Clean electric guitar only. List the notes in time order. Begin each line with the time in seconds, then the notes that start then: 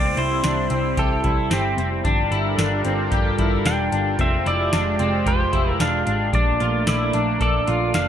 Already playing: C4
0.17 E4
0.44 D4
0.70 C4
0.97 G4
1.24 E4
1.51 C4
1.77 C4
2.04 D4
2.31 E4
2.58 D4
2.85 C4
3.12 G4
3.39 E4
3.66 D4
3.92 D4
4.19 C4
4.46 E4
4.73 D4
4.99 C4
5.26 G4
5.52 E4
5.80 D4
6.06 D4
6.33 D4
6.60 F4
6.87 E4
7.14 D4
7.41 A4
7.67 F4
7.94 D4